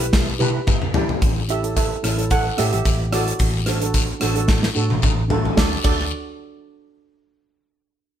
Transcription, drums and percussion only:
0.00 closed hi-hat
0.13 kick, snare, long guiro
0.40 high tom, short guiro
0.67 kick, mid tom, short guiro
0.82 mid tom
0.94 floor tom
1.09 floor tom
1.22 kick, closed hi-hat, long guiro
1.49 closed hi-hat
1.64 closed hi-hat
1.76 kick, closed hi-hat, short guiro
2.04 cross-stick, closed hi-hat, short guiro
2.19 closed hi-hat
2.30 kick, closed hi-hat, long guiro
2.58 cross-stick, closed hi-hat, short guiro
2.73 closed hi-hat
2.85 kick, closed hi-hat, short guiro
3.13 cross-stick, closed hi-hat
3.28 closed hi-hat
3.39 kick, closed hi-hat, long guiro
3.66 cross-stick, closed hi-hat
3.81 closed hi-hat
3.94 kick, closed hi-hat, short guiro
4.21 cross-stick, closed hi-hat, short guiro
4.36 closed hi-hat
4.48 kick, snare, long guiro
4.63 snare
4.76 short guiro
4.90 high tom
5.02 kick, mid tom, short guiro
5.30 floor tom
5.45 floor tom
5.57 kick, snare, long guiro
5.84 kick, crash, long guiro

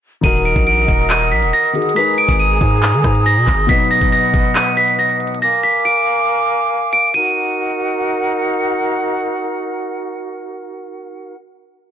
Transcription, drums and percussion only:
0.24 kick, closed hi-hat
0.45 closed hi-hat
0.56 kick
0.88 kick, closed hi-hat
1.10 clap, closed hi-hat
1.42 closed hi-hat
1.64 closed hi-hat
1.75 closed hi-hat
1.82 closed hi-hat
1.89 closed hi-hat
1.96 closed hi-hat
2.28 kick, closed hi-hat
2.61 kick, closed hi-hat
2.83 clap, closed hi-hat
3.04 kick, cross-stick
3.15 closed hi-hat
3.47 kick, clap, closed hi-hat
3.69 kick, closed hi-hat
3.91 closed hi-hat
4.01 kick
4.34 kick, closed hi-hat
4.55 clap, closed hi-hat
4.88 closed hi-hat
5.09 closed hi-hat
5.20 closed hi-hat
5.27 closed hi-hat
5.34 closed hi-hat

